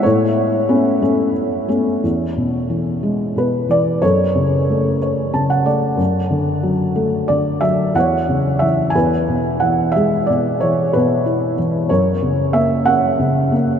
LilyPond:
<<
  \new Staff \with { instrumentName = "Felt piano" } { \time 6/8 \key e \mixolydian \tempo 4. = 61 << { cis''2 r4 | r2 b'8 d''8 | cis''4. r8 a''16 fis''16 d''8 | r2 d''8 e''8 |
fis''4 e''8 gis''4 fis''8 | e''8 d''8 cis''8 b'4 r8 | cis''4 e''8 fis''4 r8 | } \\ { r2. | r2. | a'4. r4. | r2. |
cis''4. b'4. | gis'4. r4. | ais'4. r4. | } >> }
  \new Staff \with { instrumentName = "Felt piano" } { \clef bass \time 6/8 \key e \mixolydian a,4 <a b cis'>8 <a b cis'>4 <a b cis'>8 | e,8 b,8 e8 gis8 b,8 e8 | fis,8 cis8 a8 cis''8 cis8 a8 | fis,8 d8 fis8 a8 d8 fis8 |
e,8 cis8 e8 e,8 b,8 e8 | gis8 b,8 e8 b,8 e'8 e8 | fis,8 cis8 ais8 cis'8 cis8 ais8 | }
>>